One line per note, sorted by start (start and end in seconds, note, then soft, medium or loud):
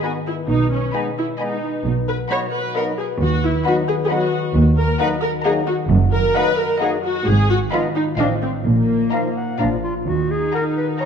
0.00 0.50 G#2 soft
0.00 0.50 D#3 soft
0.00 0.19 B3 soft
0.00 0.93 D#4 soft
0.00 0.20 D#4 soft
0.00 0.11 F#4 medium
0.00 1.16 G#4 soft
0.00 0.18 D#5 soft
0.00 1.39 D#5 soft
0.00 0.37 D#5 soft
0.00 0.37 G#5 soft
0.00 0.37 B5 soft
0.04 0.12 G#5 soft
0.25 0.34 E4 medium
0.25 1.62 B4 soft
0.48 0.85 B1 medium
0.48 1.84 B2 medium
0.48 0.85 B2 medium
0.48 0.71 D#4 medium
0.71 1.87 G#3 soft
0.71 0.94 C#4 medium
0.93 1.10 G#3 soft
0.93 1.10 B3 soft
0.93 1.09 D#4 soft
0.93 2.29 D#4 soft
0.93 1.03 D#4 medium
0.93 1.28 D#5 medium
0.93 1.11 D#5 soft
0.93 1.29 G#5 medium
0.93 1.03 G#5 soft
0.93 1.29 B5 soft
1.18 1.26 E4 medium
1.18 1.87 G#4 soft
1.39 1.57 G#3 soft
1.39 1.56 B3 soft
1.39 1.84 D#4 medium
1.39 1.56 D#4 soft
1.39 1.73 D#5 medium
1.39 2.74 D#5 soft
1.39 1.57 D#5 soft
1.39 1.73 G#5 soft
1.39 1.48 G#5 soft
1.39 1.73 B5 soft
1.63 2.97 B4 soft
1.85 2.21 B1 medium
1.85 3.23 B2 soft
1.85 2.21 B2 medium
2.08 5.92 F#3 soft
2.08 2.16 B4 medium
2.30 2.47 F#3 soft
2.30 2.46 B3 soft
2.30 5.92 D#4 soft
2.30 2.47 D#4 soft
2.30 2.39 C#5 medium
2.30 2.64 D#5 medium
2.30 2.47 D#5 soft
2.30 2.64 F#5 soft
2.30 2.39 F#5 soft
2.30 2.64 B5 medium
2.52 3.64 F#4 soft
2.52 2.75 B4 medium
2.75 2.92 F#3 soft
2.75 2.92 B3 soft
2.75 2.92 D#4 soft
2.75 2.83 A#4 medium
2.75 3.09 D#5 medium
2.75 4.31 D#5 soft
2.75 2.93 D#5 soft
2.75 3.09 F#5 medium
2.75 2.84 F#5 soft
2.75 3.09 B5 medium
2.98 3.06 G#4 medium
2.98 3.86 B4 soft
3.20 3.56 D#2 medium
3.20 4.54 D#3 medium
3.20 3.43 F#4 medium
3.43 4.57 B3 soft
3.43 3.66 E4 medium
3.65 3.82 F#3 medium
3.65 3.82 B3 medium
3.65 3.81 D#4 medium
3.65 4.98 F#4 soft
3.65 3.74 F#4 medium
3.65 3.99 D#5 medium
3.65 3.82 D#5 soft
3.65 3.73 F#5 soft
3.65 3.99 F#5 medium
3.65 3.99 B5 medium
3.87 3.94 G#4 medium
3.87 4.57 B4 soft
4.05 4.11 G#4 soft
4.10 4.26 F#3 medium
4.10 4.27 B3 medium
4.10 4.26 D#4 soft
4.10 4.55 F#4 medium
4.10 4.44 D#5 medium
4.10 4.27 D#5 soft
4.10 4.44 F#5 medium
4.10 5.43 F#5 medium
4.10 4.18 F#5 medium
4.10 4.44 B5 medium
4.33 5.67 D#5 medium
4.55 4.91 D#2 medium
4.55 5.92 D#3 medium
4.77 7.28 A#3 soft
4.77 4.98 A#4 medium
4.99 5.16 F#3 medium
4.99 5.16 A#3 soft
4.99 5.16 D#4 medium
4.99 6.57 F#4 soft
4.99 5.08 B4 medium
4.99 5.33 D#5 medium
4.99 5.17 D#5 medium
4.99 5.33 F#5 medium
4.99 5.08 F#5 medium
4.99 5.34 A#5 medium
5.22 5.30 A#4 medium
5.22 7.03 A#4 soft
5.45 5.61 F#3 medium
5.45 5.61 A#3 soft
5.45 5.62 D#4 medium
5.45 5.53 G#4 medium
5.45 5.78 D#5 medium
5.45 5.61 D#5 soft
5.45 5.53 F#5 medium
5.45 7.28 F#5 medium
5.45 5.78 F#5 medium
5.45 5.79 A#5 medium
5.66 5.74 F#4 medium
5.66 6.79 D#5 medium
5.90 6.26 F#1 medium
5.90 7.29 F#2 medium
5.90 6.26 F#2 medium
6.12 7.28 F#3 soft
6.12 6.34 A#4 medium
6.35 6.52 F#3 medium
6.35 6.52 A#3 medium
6.35 7.71 D#4 soft
6.35 6.52 D#4 medium
6.35 6.58 B4 medium
6.35 6.69 D#5 medium
6.35 6.52 D#5 medium
6.35 6.69 F#5 medium
6.35 6.44 F#5 medium
6.35 6.70 A#5 medium
6.58 7.28 F#4 soft
6.58 6.81 A#4 medium
6.80 6.96 F#3 medium
6.80 6.97 A#3 medium
6.80 6.97 D#4 medium
6.80 6.89 G#4 medium
6.80 9.61 D#5 medium
6.80 7.15 D#5 medium
6.80 6.98 D#5 medium
6.80 7.15 F#5 medium
6.80 6.90 F#5 medium
6.80 7.15 A#5 medium
7.03 7.26 F#4 medium
7.03 7.29 A#4 medium
7.27 7.63 G#1 medium
7.27 8.20 G#2 medium
7.27 7.63 G#2 medium
7.27 7.50 G#4 loud
7.50 8.20 D#3 soft
7.50 7.58 F#4 medium
7.72 7.89 F3 medium
7.72 7.88 B3 medium
7.72 8.40 D#4 soft
7.72 7.88 D#4 medium
7.72 7.81 F4 medium
7.72 8.06 D#5 medium
7.72 7.89 D#5 medium
7.72 8.06 F5 medium
7.72 7.82 F5 soft
7.72 8.07 B5 medium
7.95 8.03 D#4 medium
7.95 8.40 F4 soft
8.18 8.55 A1 medium
8.18 8.67 A2 medium
8.18 8.55 A2 medium
8.18 8.35 F3 soft
8.18 8.34 C4 soft
8.18 8.27 D4 medium
8.18 8.35 D#4 soft
8.18 8.53 D#5 medium
8.18 8.35 D#5 soft
8.18 8.53 F5 medium
8.18 8.27 F5 soft
8.41 8.50 C4 medium
8.41 9.12 D#4 soft
8.41 9.36 F4 soft
8.65 9.03 A#1 medium
8.65 9.59 A#2 soft
8.65 9.03 A#2 medium
8.65 9.59 A#3 medium
8.90 11.05 A#3 soft
9.12 9.29 F3 soft
9.12 9.28 D#4 soft
9.12 9.62 D#4 soft
9.12 9.48 D#5 medium
9.12 9.23 F5 medium
9.12 9.48 F5 medium
9.12 9.21 F5 soft
9.12 9.48 A#5 medium
9.35 9.83 F4 soft
9.35 9.59 F#5 medium
9.59 9.98 A#1 medium
9.59 10.09 A#2 soft
9.59 9.97 A#2 medium
9.59 9.75 F3 soft
9.59 9.77 F3 soft
9.59 9.75 D4 soft
9.59 9.70 D4 medium
9.59 9.95 D5 soft
9.59 9.68 F5 soft
9.59 9.95 F5 medium
9.59 9.96 A#5 soft
9.84 10.09 D4 soft
9.84 9.94 F4 medium
9.84 10.09 F4 soft
10.07 10.44 D#2 medium
10.07 11.05 D#3 soft
10.07 11.05 D#4 medium
10.07 10.32 F#4 medium
10.30 11.05 D#4 soft
10.30 10.54 G#4 medium
10.53 10.65 A#4 medium
10.53 10.88 F#5 soft
10.53 10.88 A#5 medium
10.77 11.05 F#4 soft
10.77 10.87 B4 medium
10.99 11.05 C#5 medium
10.99 11.05 D#5 soft
10.99 11.05 F#5 soft
10.99 11.05 A#5 medium
10.99 11.05 A#5 soft